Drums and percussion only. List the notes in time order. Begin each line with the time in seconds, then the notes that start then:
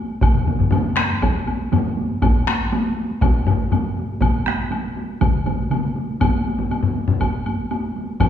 0.10 taiko high
0.21 taiko, taiko low-mid, taiko mid, taiko high, high woodblock
0.34 taiko low-mid, taiko mid, taiko high
0.46 taiko low-mid, taiko mid, taiko high
0.59 taiko low-mid, taiko mid, taiko high
0.71 taiko low-mid, taiko mid, taiko high, high woodblock
0.85 taiko high
0.97 taiko rim, taiko high
1.10 taiko high
1.22 taiko, taiko high, high woodblock
1.35 taiko high
1.47 taiko high, high woodblock
1.60 taiko high
1.72 taiko low-mid, taiko mid, taiko high, high woodblock
1.97 taiko high
2.10 taiko high
2.22 taiko, taiko low-mid, taiko high, high woodblock
2.35 taiko high
2.47 taiko rim, taiko high
2.60 taiko high
2.72 taiko high, high woodblock
2.85 taiko high
2.97 taiko high
3.09 taiko high
3.21 taiko, taiko low-mid, taiko high, high woodblock
3.34 taiko high
3.46 taiko low-mid, taiko high, high woodblock
3.60 taiko high
3.72 taiko low-mid, taiko high, high woodblock
3.97 taiko high
4.09 taiko high
4.21 taiko, taiko mid, taiko high, high woodblock
4.34 taiko high
4.46 taiko rim, taiko high
4.59 taiko high
4.71 taiko high, high woodblock
4.84 taiko high
4.96 taiko high
5.09 taiko high
5.21 taiko, taiko mid, taiko high, high woodblock
5.34 taiko high
5.46 taiko mid, taiko high, high woodblock
5.59 taiko high
5.71 taiko mid, taiko high, high woodblock
5.96 taiko high
6.09 taiko high
6.21 taiko, taiko low-mid, taiko high, high woodblock
6.34 taiko high
6.46 taiko high
6.58 taiko low-mid, taiko high
6.70 taiko high, high woodblock
6.83 taiko low-mid, taiko high
6.96 taiko high
7.08 taiko low-mid, taiko high
7.20 taiko, taiko high, high woodblock
7.33 taiko high
7.46 taiko high, high woodblock
7.59 taiko high
7.71 taiko high, high woodblock
7.96 taiko high
8.08 taiko high
8.20 taiko, taiko low-mid, taiko mid, taiko high, high woodblock